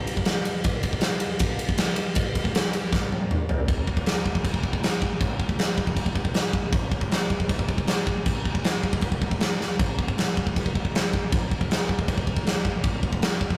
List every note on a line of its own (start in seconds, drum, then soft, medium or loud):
0.07 ride medium
0.17 kick medium
0.25 snare loud
0.25 ride medium
0.45 ride medium
0.64 kick loud
0.64 ride loud
0.83 kick medium
0.83 ride medium
0.93 kick medium
1.01 snare loud
1.01 ride medium
1.20 ride medium
1.39 kick loud
1.39 ride loud
1.59 ride medium
1.69 kick medium
1.78 snare loud
1.78 ride loud
1.96 ride medium
2.15 kick loud
2.15 ride loud
2.35 kick medium
2.35 ride medium
2.45 kick medium
2.55 snare loud
2.55 ride loud
2.73 ride medium
2.93 kick loud
2.93 snare medium
3.12 high tom medium
3.31 mid tom medium
3.49 floor tom medium
3.68 kick loud
3.68 crash medium
3.87 kick medium
3.97 kick medium
4.06 snare loud
4.06 crash medium
4.26 kick medium
4.35 kick medium
4.45 kick medium
4.45 crash medium
4.54 kick medium
4.63 kick medium
4.73 kick medium
4.83 snare loud
4.83 crash medium
5.02 kick medium
5.21 kick loud
5.21 crash medium
5.40 kick medium
5.49 kick medium
5.59 snare loud
5.59 crash medium
5.78 kick medium
5.87 kick medium
5.97 kick medium
5.97 crash medium
6.06 kick medium
6.15 kick medium
6.25 kick medium
6.34 snare loud
6.34 crash soft
6.53 kick medium
6.72 kick loud
6.72 crash medium
6.92 kick medium
7.01 kick medium
7.11 snare loud
7.11 crash soft
7.30 kick medium
7.40 kick medium
7.49 kick loud
7.49 crash medium
7.59 kick medium
7.69 kick medium
7.78 kick medium
7.87 snare loud
7.87 crash medium
8.07 kick medium
8.26 kick loud
8.26 crash medium
8.45 kick medium
8.55 kick medium
8.64 snare loud
8.64 crash medium
8.83 kick medium
8.93 kick medium
9.01 kick medium
9.01 crash medium
9.12 kick medium
9.22 kick medium
9.31 kick medium
9.40 snare loud
9.40 crash medium
9.61 snare medium
9.79 kick loud
9.79 crash medium
9.99 kick medium
10.08 kick medium
10.18 snare loud
10.18 crash medium
10.37 kick medium
10.47 kick medium
10.56 kick loud
10.56 crash medium
10.66 kick medium
10.75 kick medium
10.85 kick medium
10.95 snare loud
10.95 crash medium
11.14 kick medium
11.32 kick loud
11.32 crash medium
11.51 kick medium
11.61 kick medium
11.71 snare loud
11.71 crash medium
11.89 kick medium
11.99 kick medium
12.08 kick loud
12.08 crash medium
12.18 kick medium
12.27 kick medium
12.37 kick medium
12.47 snare loud
12.47 crash medium
12.65 kick medium
12.83 kick loud
12.83 crash medium
13.03 kick medium
13.13 kick medium
13.22 snare loud
13.22 crash medium
13.41 kick medium
13.50 kick medium